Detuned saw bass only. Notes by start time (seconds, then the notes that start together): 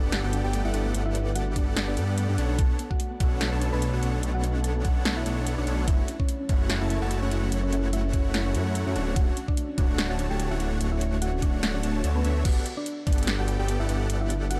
Already playing: G1
0.24 G1
0.44 G1
0.65 G1
0.74 G1
0.95 G1
1.56 G1
1.77 G1
1.97 G2
2.29 G2
2.38 B1
2.59 B1
3.21 B1
3.52 B1
3.73 B1
3.94 B1
4.03 B1
4.23 B1
4.85 B1
5.05 B1
5.26 B1
5.58 B1
5.67 B1
5.88 F#1
6.49 F#1
6.81 F#1
7.02 F#1
7.22 F#1
7.32 F#1
7.52 F#1
8.14 F#1
8.34 F#1
8.55 F#2
8.87 F#2
8.96 D1
9.16 D1
9.78 D1
10.10 D1
10.30 D1
10.51 D1
10.60 D1
10.81 D1
11.42 D1
11.63 D1
11.84 D1
12.04 D2
12.25 D2
12.45 G1
13.07 G1
13.39 G1
13.59 G1
13.80 G1
13.89 G1
14.10 G1